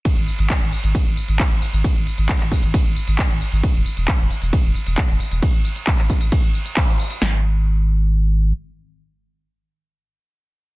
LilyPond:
<<
  \new Staff \with { instrumentName = "Sub bass" } { \clef bass \time 4/4 \key e \lydian \tempo 4 = 134 r16 gis,,16 r16 gis,,16 r16 gis,,16 r16 gis,,16 r16 gis,,16 r16 gis,,16 r16 gis,,16 r16 gis,,16 | r16 gis,,16 r16 gis,,16 r16 gis,,16 r16 gis,,16 r16 gis,,16 r16 gis,,16 r16 gis,,16 r16 gis,,16 | r16 e,,16 r16 e,,16 r16 e,,16 r16 e,,16 r16 e,,16 r16 e,,16 r16 e,,16 r16 e,,16 | r1 |
gis,,2. r4 | r1 | }
  \new DrumStaff \with { instrumentName = "Drums" } \drummode { \time 4/4 <hh bd cymr tamb>16 <hh tamb>16 <hho tamb>16 <hh tamb>16 <hc hh bd cymr tamb>16 <hh tamb>16 <hho tamb>16 <hh tamb>16 <hh bd cymr tamb>16 <hho tamb>16 <hho tamb>16 <hh tamb>16 <hc hh bd cymr tamb>16 <hh tamb>16 <hho tamb>16 <hh tamb>16 | <hh bd cymr tamb>16 <hh tamb>16 <hho tamb>16 <hh tamb>16 <hc hh bd cymr>16 <hc hh tamb>16 <hho bd tamb>16 <hh tamb>16 <hh bd cymr tamb>16 <hho tamb>16 <hho tamb>16 <hh tamb>16 <hc hh bd cymr tamb>16 <hh tamb>16 <hho tamb>16 <hh tamb>16 | <hh bd cymr>16 <hh tamb>16 <hho tamb>16 <hh tamb>16 <hc hh bd cymr>16 <hh tamb>16 <hho tamb>16 <hh tamb>16 <hh bd cymr tamb>16 <hho tamb>16 <hho tamb>16 <hh tamb>16 <hc hh bd cymr tamb>16 <hh tamb>16 <hho tamb>16 <hh tamb>16 | <hh bd cymr tamb>16 <hh tamb>16 <hho tamb>16 <hh tamb>16 <hc hh bd cymr tamb>16 <hc hh tamb>16 <hho bd tamb>16 <hh tamb>16 <hh bd cymr tamb>16 <hho tamb>16 <hho tamb>16 <hh tamb>16 <hc hh bd cymr tamb>16 <hh tamb>16 <hho tamb>16 <hh tamb>16 |
sn4 r4 r4 r4 | r4 r4 r4 r4 | }
>>